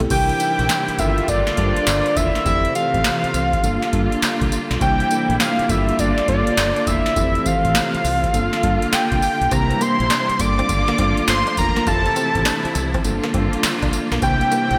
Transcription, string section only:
0, 0, Header, 1, 2, 480
1, 0, Start_track
1, 0, Tempo, 588235
1, 86, Time_signature, 4, 2, 24, 8
1, 12065, End_track
2, 0, Start_track
2, 0, Title_t, "String section"
2, 0, Program_c, 0, 48
2, 84, Note_on_c, 0, 55, 74
2, 84, Note_on_c, 0, 58, 68
2, 84, Note_on_c, 0, 64, 87
2, 85, Note_on_c, 0, 48, 74
2, 85, Note_on_c, 0, 52, 72
2, 798, Note_off_c, 0, 48, 0
2, 798, Note_off_c, 0, 52, 0
2, 798, Note_off_c, 0, 64, 0
2, 804, Note_on_c, 0, 50, 78
2, 805, Note_on_c, 0, 65, 93
2, 1986, Note_off_c, 0, 55, 0
2, 1986, Note_off_c, 0, 58, 0
2, 1993, Note_off_c, 0, 50, 0
2, 1993, Note_off_c, 0, 65, 0
2, 2003, Note_on_c, 0, 57, 74
2, 2004, Note_on_c, 0, 48, 78
2, 2004, Note_on_c, 0, 52, 76
2, 2004, Note_on_c, 0, 60, 88
2, 2955, Note_off_c, 0, 48, 0
2, 2955, Note_off_c, 0, 52, 0
2, 2955, Note_off_c, 0, 57, 0
2, 2955, Note_off_c, 0, 60, 0
2, 2965, Note_on_c, 0, 50, 78
2, 2965, Note_on_c, 0, 55, 77
2, 2965, Note_on_c, 0, 65, 88
2, 2966, Note_on_c, 0, 58, 74
2, 3916, Note_off_c, 0, 50, 0
2, 3916, Note_off_c, 0, 65, 0
2, 3926, Note_on_c, 0, 52, 66
2, 3927, Note_on_c, 0, 48, 77
2, 3927, Note_on_c, 0, 64, 84
2, 4639, Note_off_c, 0, 48, 0
2, 4639, Note_off_c, 0, 52, 0
2, 4639, Note_off_c, 0, 64, 0
2, 4645, Note_on_c, 0, 50, 84
2, 4646, Note_on_c, 0, 65, 85
2, 5817, Note_off_c, 0, 55, 0
2, 5817, Note_off_c, 0, 58, 0
2, 5834, Note_off_c, 0, 50, 0
2, 5834, Note_off_c, 0, 65, 0
2, 5848, Note_on_c, 0, 57, 72
2, 5848, Note_on_c, 0, 60, 88
2, 5849, Note_on_c, 0, 48, 81
2, 5849, Note_on_c, 0, 52, 70
2, 6797, Note_off_c, 0, 60, 0
2, 6798, Note_off_c, 0, 48, 0
2, 6798, Note_off_c, 0, 52, 0
2, 6798, Note_off_c, 0, 57, 0
2, 6806, Note_on_c, 0, 50, 77
2, 6806, Note_on_c, 0, 58, 69
2, 6807, Note_on_c, 0, 55, 72
2, 6808, Note_on_c, 0, 65, 85
2, 7756, Note_off_c, 0, 58, 0
2, 7757, Note_off_c, 0, 50, 0
2, 7757, Note_off_c, 0, 65, 0
2, 7768, Note_on_c, 0, 52, 70
2, 7768, Note_on_c, 0, 58, 71
2, 7769, Note_on_c, 0, 48, 81
2, 7769, Note_on_c, 0, 64, 86
2, 8480, Note_off_c, 0, 48, 0
2, 8480, Note_off_c, 0, 52, 0
2, 8481, Note_off_c, 0, 64, 0
2, 8487, Note_on_c, 0, 50, 81
2, 8487, Note_on_c, 0, 53, 74
2, 8487, Note_on_c, 0, 65, 93
2, 9658, Note_off_c, 0, 55, 0
2, 9668, Note_off_c, 0, 58, 0
2, 9675, Note_off_c, 0, 50, 0
2, 9675, Note_off_c, 0, 65, 0
2, 9687, Note_on_c, 0, 48, 78
2, 9687, Note_on_c, 0, 52, 70
2, 9687, Note_on_c, 0, 64, 86
2, 9688, Note_on_c, 0, 57, 72
2, 10637, Note_off_c, 0, 48, 0
2, 10637, Note_off_c, 0, 52, 0
2, 10637, Note_off_c, 0, 57, 0
2, 10637, Note_off_c, 0, 64, 0
2, 10645, Note_on_c, 0, 50, 83
2, 10646, Note_on_c, 0, 55, 80
2, 10646, Note_on_c, 0, 58, 81
2, 10647, Note_on_c, 0, 65, 88
2, 11575, Note_off_c, 0, 53, 0
2, 11594, Note_off_c, 0, 55, 0
2, 11596, Note_off_c, 0, 50, 0
2, 11597, Note_off_c, 0, 65, 0
2, 11602, Note_on_c, 0, 64, 82
2, 11603, Note_on_c, 0, 52, 71
2, 11603, Note_on_c, 0, 55, 73
2, 11604, Note_on_c, 0, 48, 78
2, 12065, Note_off_c, 0, 48, 0
2, 12065, Note_off_c, 0, 52, 0
2, 12065, Note_off_c, 0, 55, 0
2, 12065, Note_off_c, 0, 58, 0
2, 12065, Note_off_c, 0, 64, 0
2, 12065, End_track
0, 0, End_of_file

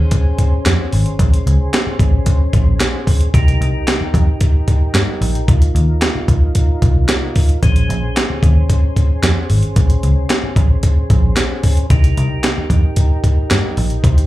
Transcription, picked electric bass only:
0, 0, Header, 1, 3, 480
1, 0, Start_track
1, 0, Tempo, 535236
1, 1070, Time_signature, 4, 2, 24, 8
1, 12795, End_track
2, 0, Start_track
2, 0, Title_t, "Picked electric bass"
2, 0, Program_c, 0, 34
2, 591, Note_on_c, 0, 41, 87
2, 688, Note_off_c, 0, 41, 0
2, 833, Note_on_c, 0, 32, 91
2, 930, Note_off_c, 0, 32, 0
2, 1073, Note_on_c, 0, 34, 104
2, 1170, Note_off_c, 0, 34, 0
2, 1315, Note_on_c, 0, 37, 96
2, 1411, Note_off_c, 0, 37, 0
2, 1788, Note_on_c, 0, 34, 106
2, 1887, Note_off_c, 0, 34, 0
2, 2273, Note_on_c, 0, 34, 93
2, 2469, Note_off_c, 0, 34, 0
2, 2994, Note_on_c, 0, 36, 97
2, 3190, Note_off_c, 0, 36, 0
2, 3234, Note_on_c, 0, 36, 101
2, 3332, Note_off_c, 0, 36, 0
2, 3712, Note_on_c, 0, 41, 96
2, 3811, Note_off_c, 0, 41, 0
2, 4430, Note_on_c, 0, 43, 89
2, 4530, Note_off_c, 0, 43, 0
2, 4674, Note_on_c, 0, 34, 84
2, 4773, Note_off_c, 0, 34, 0
2, 4917, Note_on_c, 0, 36, 107
2, 5015, Note_off_c, 0, 36, 0
2, 5156, Note_on_c, 0, 39, 95
2, 5254, Note_off_c, 0, 39, 0
2, 5634, Note_on_c, 0, 36, 90
2, 5733, Note_off_c, 0, 36, 0
2, 6119, Note_on_c, 0, 36, 85
2, 6314, Note_off_c, 0, 36, 0
2, 6841, Note_on_c, 0, 34, 92
2, 7035, Note_off_c, 0, 34, 0
2, 7079, Note_on_c, 0, 34, 98
2, 7176, Note_off_c, 0, 34, 0
2, 7557, Note_on_c, 0, 39, 96
2, 7655, Note_off_c, 0, 39, 0
2, 8277, Note_on_c, 0, 41, 78
2, 8375, Note_off_c, 0, 41, 0
2, 8518, Note_on_c, 0, 32, 92
2, 8615, Note_off_c, 0, 32, 0
2, 8756, Note_on_c, 0, 34, 100
2, 8854, Note_off_c, 0, 34, 0
2, 8998, Note_on_c, 0, 37, 90
2, 9095, Note_off_c, 0, 37, 0
2, 9471, Note_on_c, 0, 34, 104
2, 9570, Note_off_c, 0, 34, 0
2, 9956, Note_on_c, 0, 34, 102
2, 10151, Note_off_c, 0, 34, 0
2, 10673, Note_on_c, 0, 36, 104
2, 10868, Note_off_c, 0, 36, 0
2, 10917, Note_on_c, 0, 36, 110
2, 11013, Note_off_c, 0, 36, 0
2, 11388, Note_on_c, 0, 41, 100
2, 11487, Note_off_c, 0, 41, 0
2, 12117, Note_on_c, 0, 43, 76
2, 12212, Note_off_c, 0, 43, 0
2, 12353, Note_on_c, 0, 34, 92
2, 12449, Note_off_c, 0, 34, 0
2, 12589, Note_on_c, 0, 36, 118
2, 12686, Note_off_c, 0, 36, 0
2, 12795, End_track
3, 0, Start_track
3, 0, Title_t, "Muted picked electric bass strokes"
3, 1674, Note_on_c, 9, 29, 42
3, 1764, Note_off_c, 9, 29, 0
3, 3593, Note_on_c, 9, 29, 45
3, 3683, Note_off_c, 9, 29, 0
3, 5517, Note_on_c, 9, 29, 43
3, 5607, Note_off_c, 9, 29, 0
3, 7443, Note_on_c, 9, 29, 47
3, 7533, Note_off_c, 9, 29, 0
3, 9357, Note_on_c, 9, 29, 42
3, 9447, Note_off_c, 9, 29, 0
3, 11280, Note_on_c, 9, 29, 42
3, 11370, Note_off_c, 9, 29, 0
3, 12795, End_track
0, 0, End_of_file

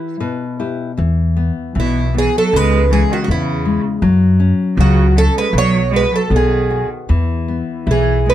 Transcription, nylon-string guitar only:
0, 0, Header, 1, 2, 480
1, 0, Start_track
1, 0, Key_signature, 4, "major"
1, 0, Tempo, 776197
1, 613, Time_signature, 2, 2, 24, 8
1, 1567, Tempo, 750000
1, 3487, Tempo, 778210
1, 5220, End_track
2, 0, Start_track
2, 0, Title_t, "Nylon-string guitar"
2, 0, Program_c, 0, 24
2, 0, Note_on_c, 0, 52, 59
2, 0, Note_on_c, 0, 64, 45
2, 0, Note_on_c, 0, 67, 41
2, 0, Note_on_c, 0, 71, 49
2, 115, Note_off_c, 0, 52, 0
2, 118, Note_off_c, 0, 71, 0
2, 126, Note_on_c, 0, 47, 58
2, 126, Note_on_c, 0, 71, 62
2, 269, Note_off_c, 0, 64, 0
2, 272, Note_off_c, 0, 67, 0
2, 363, Note_off_c, 0, 71, 0
2, 368, Note_on_c, 0, 64, 39
2, 369, Note_on_c, 0, 67, 37
2, 371, Note_on_c, 0, 71, 40
2, 562, Note_off_c, 0, 64, 0
2, 563, Note_off_c, 0, 67, 0
2, 564, Note_off_c, 0, 71, 0
2, 597, Note_off_c, 0, 47, 0
2, 603, Note_on_c, 0, 52, 51
2, 845, Note_on_c, 0, 59, 48
2, 1075, Note_off_c, 0, 52, 0
2, 1081, Note_off_c, 0, 59, 0
2, 1083, Note_on_c, 0, 52, 54
2, 1319, Note_off_c, 0, 52, 0
2, 1325, Note_on_c, 0, 59, 53
2, 1558, Note_off_c, 0, 59, 0
2, 1562, Note_on_c, 0, 49, 56
2, 1808, Note_on_c, 0, 56, 50
2, 2037, Note_off_c, 0, 56, 0
2, 2040, Note_on_c, 0, 59, 60
2, 2270, Note_off_c, 0, 59, 0
2, 2284, Note_on_c, 0, 56, 53
2, 2489, Note_off_c, 0, 49, 0
2, 2512, Note_off_c, 0, 56, 0
2, 2518, Note_on_c, 0, 54, 68
2, 2760, Note_on_c, 0, 61, 51
2, 2994, Note_off_c, 0, 61, 0
2, 3001, Note_off_c, 0, 54, 0
2, 3008, Note_on_c, 0, 54, 57
2, 3240, Note_off_c, 0, 54, 0
2, 3253, Note_on_c, 0, 61, 60
2, 3484, Note_off_c, 0, 61, 0
2, 3495, Note_on_c, 0, 59, 59
2, 3734, Note_on_c, 0, 66, 50
2, 3954, Note_off_c, 0, 59, 0
2, 3962, Note_off_c, 0, 66, 0
2, 3966, Note_on_c, 0, 59, 62
2, 4210, Note_on_c, 0, 66, 45
2, 4435, Note_off_c, 0, 59, 0
2, 4443, Note_off_c, 0, 66, 0
2, 4446, Note_on_c, 0, 52, 59
2, 4689, Note_on_c, 0, 59, 47
2, 4922, Note_off_c, 0, 59, 0
2, 4925, Note_on_c, 0, 64, 58
2, 5159, Note_off_c, 0, 64, 0
2, 5168, Note_on_c, 0, 59, 47
2, 5220, Note_off_c, 0, 52, 0
2, 5220, Note_off_c, 0, 59, 0
2, 5220, End_track
0, 0, End_of_file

